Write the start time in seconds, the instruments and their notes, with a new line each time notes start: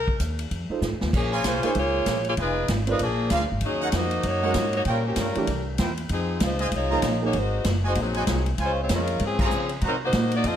Already playing: upright bass C2, saxophone section A#4
0.08 kick
0.20 upright bass D#2, kick, hi-hat pedal, ride
0.39 ride
0.51 upright bass F2, kick, ride
0.69 grand piano D#4 F4 A4 C5, muted upright bass stroke
0.82 upright bass A2, snare, hi-hat pedal
0.92 upright bass F2
1.01 upright bass D#2, snare
1.13 upright bass A#1, saxophone section F3 A#3 C#4 G#4, kick, crash
1.32 trumpet section F4 A#4 C#5 G#5
1.44 upright bass C2, saxophone section A#3 F4 G#4 C5, kick, snare, hi-hat pedal, ride
1.63 grand piano A#3 D#4 G#4 C5, trumpet section F4 A#4 C#5 G#5, muted upright bass stroke, ride
1.75 upright bass C#2, saxophone section A#3 F4 G#4 C#5, kick, ride
2.06 upright bass A#1, kick, snare, hi-hat pedal, ride
2.25 saxophone section A#3 F4 G#4 C#5, ride
2.37 upright bass F1, trumpet section F4 B4 D#5 G#5, kick, ride
2.41 saxophone section G#3 D#4 F4 B4
2.68 upright bass G#1, kick, snare, hi-hat pedal, ride
2.87 grand piano C4 F4 A#4 D5, saxophone section D#4 F4, ride
2.91 saxophone section G#3 B4
2.99 upright bass A#1, saxophone section F3 A#3 D4 G#4, kick, ride
3.30 upright bass D2, trumpet section F4 A#4 D5 F5, kick, snare, hi-hat pedal, ride
3.41 upright bass A#1
3.52 upright bass G#1
3.61 upright bass D#2, kick, ride
3.65 saxophone section F#3 C#4 D#4 G#4
3.81 trumpet section D#4 A#4 C#5 F#5
3.92 upright bass F2, saxophone section A#3 D#4 F#4 C5, kick, snare, hi-hat pedal, ride
4.11 ride
4.23 upright bass F#2, saxophone section A#3 D#4 F#4 C#5, kick, ride
4.42 grand piano G#3 C#4 F#4 A#4, trumpet section D#4 A#4 C#5 F#5
4.54 upright bass G#2, kick, snare, hi-hat pedal, ride
4.73 saxophone section A#3 D#4 F#4 C#5, ride
4.85 upright bass A#2, saxophone section G3 C#4 F4 A#4, trumpet section F4 A#4 C#5 G5, kick, ride
5.07 saxophone section F3 A#3 C#4 G4
5.16 upright bass G2, saxophone section G3 C#4 F4 A#4, kick, snare, hi-hat pedal, ride
5.35 grand piano E3 A3 D4 G4, muted upright bass stroke, ride
5.47 upright bass C2, kick, ride
5.78 upright bass E2, trumpet section E4 A#4 C5 G5, kick, snare, hi-hat pedal, ride
5.97 ride
6.09 upright bass F2, saxophone section F3 C4 D#4 G#4, kick, ride
6.40 upright bass C#2, saxophone section G#3 D#4 F4 C5, kick, snare, hi-hat pedal, ride
6.59 trumpet section F4 C5 D#5 G#5, ride
6.71 upright bass C2, saxophone section G#3 D#4 F4 C#5, kick, ride
6.91 grand piano F3 A#3 D#4 G#4, trumpet section F4 C5 D#5 A#5
7.02 upright bass A#1, kick, snare, hi-hat pedal, ride
7.21 grand piano A#3 D#4 G#4 A#4, saxophone section A#3 D#4 F#4 C#5
7.33 upright bass G#1, kick, ride
7.37 saxophone section G#3 D#4 F#4 C5
7.64 upright bass F#1, kick, snare, hi-hat pedal, ride
7.84 saxophone section G#3 D#4 F#4, trumpet section F#4 C5 D#5 G#5
7.88 saxophone section C5
7.95 upright bass A#1, kick, ride
8.00 saxophone section F#3 C4 D#4 G#4
8.14 trumpet section F#4 C5 D#5 G#5, ride
8.27 upright bass C2, kick, snare, hi-hat pedal, ride
8.46 ride
8.58 upright bass C#2, trumpet section F4 C5 C#5 G#5, kick, ride
8.64 saxophone section G#3 C#4 F4 C5
8.83 saxophone section G#3 C4 F4 C#5
8.89 upright bass F2, kick, snare, hi-hat pedal, ride
8.95 saxophone section G#3 C#4 F4 A#4
9.07 ride
9.19 upright bass G#2, kick, ride
9.25 saxophone section F3 C4 C#4 G#4
9.39 trumpet section F4 C5 C#5 A#5, kick, crash
9.44 saxophone section F3 C4 C#4 G#4
9.50 upright bass C#3, hi-hat pedal
9.69 ride
9.81 upright bass C3, trumpet section F#4 C5 D#5 A#5, kick, ride
9.87 saxophone section F#3 C4 D#4 A#4
10.04 saxophone section A#3 D#4 F#4 C5
10.13 upright bass A#2, kick, snare, hi-hat pedal, ride
10.31 saxophone section A#3 D#4 F#4 D5, ride
10.44 upright bass F2, saxophone section C4 F4 A4 D#5, kick, ride